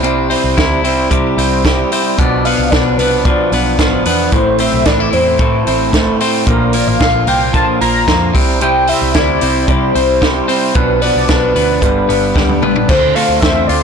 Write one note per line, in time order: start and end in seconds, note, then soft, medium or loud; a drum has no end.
0.00 0.34 C2 medium
0.00 0.30 C3 medium
0.00 0.31 G3 medium
0.00 0.30 C4 medium
0.04 0.29 E4 medium
0.04 closed hi-hat medium
0.30 0.56 G3 soft
0.30 0.57 C4 medium
0.30 0.57 E4 soft
0.30 open hi-hat medium
0.44 0.56 C2 medium
0.57 0.84 D2 medium
0.57 0.84 C3 medium
0.57 0.84 G3 medium
0.57 0.83 C4 medium
0.57 0.82 E4 medium
0.57 kick medium
0.57 snare medium
0.57 closed hi-hat medium
0.83 1.07 C2 medium
0.83 1.10 G3 soft
0.83 1.10 C4 soft
0.83 1.11 E4 medium
0.83 open hi-hat medium
1.10 1.38 C3 medium
1.10 1.34 C3 medium
1.10 1.38 G3 medium
1.10 1.37 C4 medium
1.10 1.36 E4 medium
1.10 kick medium
1.10 closed hi-hat medium
1.37 1.83 C2 medium
1.37 1.64 G3 soft
1.37 1.64 C4 soft
1.37 1.64 E4 medium
1.37 open hi-hat medium
1.64 1.91 C3 medium
1.64 1.92 G3 medium
1.64 1.91 C4 medium
1.64 1.90 E4 medium
1.64 kick medium
1.64 snare medium
1.64 closed hi-hat medium
1.92 2.18 G3 medium
1.92 2.19 C4 medium
1.92 2.18 E4 medium
1.92 open hi-hat medium
2.18 2.53 B1 medium
2.18 2.45 B2 medium
2.18 2.45 F3 medium
2.18 2.45 B3 medium
2.18 2.43 D4 medium
2.18 2.46 D5 loud
2.18 kick loud
2.18 closed hi-hat medium
2.45 2.71 F3 soft
2.45 2.71 B3 soft
2.45 2.72 D4 soft
2.45 2.72 F5 loud
2.45 open hi-hat medium
2.58 2.70 C2 medium
2.71 2.95 B1 medium
2.71 2.99 B2 medium
2.71 2.99 F3 medium
2.71 2.98 B3 medium
2.71 2.97 D4 medium
2.71 2.99 D5 medium
2.71 kick loud
2.71 snare medium
2.71 closed hi-hat medium
2.98 3.33 C2 medium
2.98 3.24 F3 soft
2.98 3.25 B3 soft
2.98 3.25 D4 soft
2.98 3.26 B4 medium
2.98 open hi-hat medium
3.24 3.52 B2 medium
3.24 3.52 F3 medium
3.24 3.52 B3 medium
3.24 3.50 D4 medium
3.24 3.79 D5 medium
3.24 kick loud
3.24 closed hi-hat medium
3.52 3.79 B1 medium
3.52 3.79 F3 soft
3.52 3.79 B3 soft
3.52 3.79 D4 soft
3.52 open hi-hat medium
3.79 4.02 A1 medium
3.79 4.06 B2 medium
3.79 4.06 F3 medium
3.79 4.05 B3 medium
3.79 4.04 D4 medium
3.79 kick loud
3.79 snare medium
3.79 closed hi-hat medium
4.05 4.29 E2 medium
4.05 4.33 F3 soft
4.05 4.33 B3 medium
4.05 4.33 D4 medium
4.05 open hi-hat medium
4.32 4.67 A1 medium
4.32 4.59 A2 medium
4.32 4.60 E3 medium
4.32 4.60 A3 medium
4.32 4.59 C4 medium
4.32 4.57 E4 medium
4.32 4.61 C5 medium
4.32 kick medium
4.32 closed hi-hat medium
4.58 4.85 A3 soft
4.58 4.86 C4 soft
4.58 4.86 E4 soft
4.58 4.88 E5 loud
4.58 open hi-hat medium
4.73 4.84 B1 medium
4.85 5.09 A1 medium
4.85 5.13 A2 medium
4.85 5.13 E3 medium
4.85 5.13 A3 medium
4.85 5.12 C4 medium
4.85 5.00 D4 medium
4.85 5.11 E4 medium
4.85 5.14 D5 medium
4.85 kick loud
4.85 snare medium
4.85 closed hi-hat medium
5.00 6.53 E4 soft
5.12 5.36 E2 medium
5.12 5.38 A3 soft
5.12 5.39 C4 soft
5.12 5.40 E4 soft
5.12 5.94 C5 medium
5.12 open hi-hat medium
5.39 5.62 A2 medium
5.39 5.66 E3 medium
5.39 5.67 A3 medium
5.39 5.66 C4 medium
5.39 5.65 E4 medium
5.39 kick loud
5.39 closed hi-hat medium
5.66 6.12 A1 medium
5.66 5.92 A3 soft
5.66 5.93 C4 soft
5.66 5.93 E4 soft
5.66 open hi-hat medium
5.93 6.20 A2 medium
5.93 6.20 E3 medium
5.93 6.20 A3 medium
5.93 6.19 C4 medium
5.93 6.18 E4 medium
5.93 kick medium
5.93 snare medium
5.93 closed hi-hat medium
6.19 6.46 A3 soft
6.19 6.47 C4 medium
6.19 6.47 E4 medium
6.19 open hi-hat medium
6.46 6.81 A#1 loud
6.46 6.73 A#2 medium
6.46 6.74 D3 medium
6.46 6.74 F3 medium
6.46 6.73 A#3 medium
6.46 6.71 F4 medium
6.46 6.76 A#4 medium
6.46 kick loud
6.46 closed hi-hat medium
6.73 6.99 F3 soft
6.73 7.00 A#3 soft
6.73 7.00 F4 soft
6.73 6.89 D5 medium
6.73 open hi-hat medium
6.87 6.99 A1 medium
6.87 7.29 F5 loud
7.00 7.23 A#1 medium
7.00 7.27 A#2 medium
7.00 7.27 D3 medium
7.00 7.27 F3 medium
7.00 7.27 A#3 medium
7.00 7.25 F4 medium
7.00 kick loud
7.00 snare medium
7.00 closed hi-hat medium
7.26 7.62 C2 medium
7.26 7.53 F3 soft
7.26 7.54 A#3 soft
7.26 7.54 F4 soft
7.26 7.53 G5 loud
7.26 open hi-hat medium
7.53 7.81 D3 medium
7.53 7.81 F3 medium
7.53 7.81 A#3 medium
7.53 7.79 F4 medium
7.53 7.66 A5 loud
7.53 kick medium
7.53 closed hi-hat medium
7.81 8.04 A#1 medium
7.81 8.07 F3 soft
7.81 8.08 A#3 soft
7.81 8.08 F4 soft
7.81 8.31 A#5 loud
7.81 open hi-hat medium
8.08 8.30 F2 medium
8.08 8.34 A#2 medium
8.08 8.35 D3 medium
8.08 8.35 F3 medium
8.08 8.35 A#3 medium
8.08 8.33 F4 medium
8.08 kick medium
8.08 snare medium
8.08 closed hi-hat medium
8.34 8.92 C2 medium
8.34 8.61 C3 medium
8.34 8.60 G3 soft
8.34 8.61 C4 medium
8.34 8.61 E4 soft
8.34 kick medium
8.34 open hi-hat medium
8.61 8.88 C3 medium
8.61 8.88 G3 medium
8.61 8.88 C4 medium
8.61 8.86 E4 loud
8.61 8.90 G5 loud
8.61 closed hi-hat medium
8.87 9.13 G3 soft
8.87 9.14 C4 soft
8.87 9.15 E4 medium
8.87 9.19 E5 loud
8.87 open hi-hat medium
9.02 9.13 C2 medium
9.14 9.38 D2 medium
9.14 9.41 C3 medium
9.14 9.41 G3 medium
9.14 9.41 C4 medium
9.14 9.39 E4 medium
9.14 9.73 D5 medium
9.14 kick loud
9.14 snare medium
9.14 closed hi-hat medium
9.40 9.64 C2 medium
9.40 9.67 G3 soft
9.40 9.68 C4 soft
9.40 9.68 E4 soft
9.40 open hi-hat medium
9.67 9.94 C3 medium
9.67 9.91 C3 medium
9.67 9.95 G3 medium
9.67 9.94 C4 medium
9.67 9.93 E4 medium
9.67 kick loud
9.67 closed hi-hat medium
9.71 10.50 C5 medium
9.94 10.41 C2 medium
9.94 10.21 G3 soft
9.94 10.21 C4 soft
9.94 10.21 E4 soft
9.94 open hi-hat medium
10.21 10.48 C3 medium
10.21 10.49 G3 medium
10.21 10.48 C4 medium
10.21 10.47 E4 medium
10.21 kick medium
10.21 snare medium
10.21 closed hi-hat medium
10.48 10.75 G3 soft
10.48 10.76 C4 medium
10.48 10.75 E4 soft
10.48 open hi-hat medium
10.75 11.10 B1 loud
10.75 11.02 B2 medium
10.75 11.02 F3 medium
10.75 11.02 B3 medium
10.75 11.01 D4 medium
10.75 11.00 B4 medium
10.75 kick loud
10.75 closed hi-hat medium
11.02 11.28 F3 soft
11.02 11.29 B3 soft
11.02 11.29 D4 soft
11.02 11.30 D5 loud
11.02 open hi-hat medium
11.15 11.27 C2 medium
11.29 11.51 B1 medium
11.29 11.55 B2 medium
11.29 11.56 F3 medium
11.29 11.55 B3 medium
11.29 11.54 D4 medium
11.29 11.81 B4 loud
11.29 kick loud
11.29 snare medium
11.29 closed hi-hat medium
11.55 11.78 D2 medium
11.55 11.82 F3 soft
11.55 11.82 B3 soft
11.55 11.82 D4 soft
11.55 open hi-hat medium
11.81 12.05 G1 medium
11.81 12.94 G2 medium
11.81 12.09 D3 medium
11.81 12.09 G3 medium
11.81 12.09 B3 medium
11.81 12.08 D4 medium
11.81 12.58 B4 medium
11.81 kick medium
11.81 closed hi-hat medium
12.09 12.32 G1 medium
12.09 12.36 G3 soft
12.09 12.36 B3 soft
12.09 12.36 D4 medium
12.09 open hi-hat medium
12.36 12.62 D2 medium
12.36 12.62 G2 medium
12.36 12.63 D3 medium
12.36 12.63 G3 medium
12.36 12.63 B3 medium
12.36 12.61 D4 medium
12.36 kick medium
12.36 snare soft
12.49 high tom soft
12.62 12.85 A1 medium
12.62 12.90 G3 soft
12.62 12.90 B3 medium
12.62 12.89 D4 medium
12.62 mid tom medium
12.76 floor tom medium
12.89 13.12 D2 loud
12.89 13.16 D3 medium
12.89 13.16 A3 medium
12.89 13.16 C4 medium
12.89 13.15 F4 medium
12.89 13.17 C5 loud
12.89 kick loud
12.89 crash medium
13.15 13.41 A3 soft
13.15 13.42 C4 soft
13.15 13.43 F4 soft
13.15 13.40 F5 medium
13.15 open hi-hat medium
13.29 13.40 D2 medium
13.41 13.65 E2 medium
13.41 13.68 D3 medium
13.41 13.69 A3 medium
13.41 13.69 C4 medium
13.41 13.68 F4 medium
13.41 13.69 E5 loud
13.41 kick loud
13.41 snare loud
13.41 closed hi-hat medium
13.67 13.83 D2 medium
13.67 13.83 C4 soft
13.67 13.83 F4 soft
13.67 13.83 D5 medium
13.67 open hi-hat medium
13.72 13.83 A3 soft